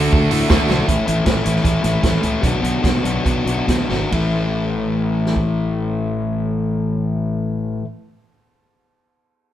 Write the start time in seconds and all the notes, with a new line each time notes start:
Already playing: D3 A3 D4 F#4 A4 D5 A5
0.12 D2 D3, kick, tambourine
0.22 tambourine
0.31 A2 A3 D4 F#4, open hi-hat, tambourine
0.49 D2 D3 A3 D4 F#4, kick, snare, tambourine
0.68 B1 A3 D4 F#4, snare, tambourine
0.87 A1 A2 E3 A3 C#4 E4, kick, closed hi-hat
1.06 A1 A2 E3 A3 C#4 E4, closed hi-hat
1.25 A1 A2 E3 A3 C#4 E4, kick, snare, closed hi-hat
1.44 A1 A2 E3 A3 C#4 E4, closed hi-hat
1.56 snare
1.63 A1 A2 E3 A3 C#4 E4, kick, closed hi-hat
1.82 A1 A2 E3 A3 C#4 E4, snare, closed hi-hat
2.02 A1 A2 E3 A3 C#4 E4, kick, snare, closed hi-hat
2.22 C#2 A2 E3 A3 C#4 E4, closed hi-hat
2.41 B1 B2 F#3 B3 D4 F#4, kick, closed hi-hat
2.61 B1 B2 F#3 B3 D4 F#4, closed hi-hat
2.82 B1 B2 F#3 B3 D4 F#4, kick, snare, closed hi-hat
3.04 B1 B2 F#3 B3 D4 F#4, closed hi-hat
3.24 B1 B2 F#3 B3 D4 F#4, kick, closed hi-hat
3.45 B1 B2 F#3 B3 D4 F#4, closed hi-hat
3.66 B2 F#3 B3 D4 F#4, kick, snare, closed hi-hat
3.90 G#1 B2 F#3 B3 D4 F#4, snare
4.11 A1 A2 E3 A3 C#4 E4, kick, ride
5.26 snare
5.36 kick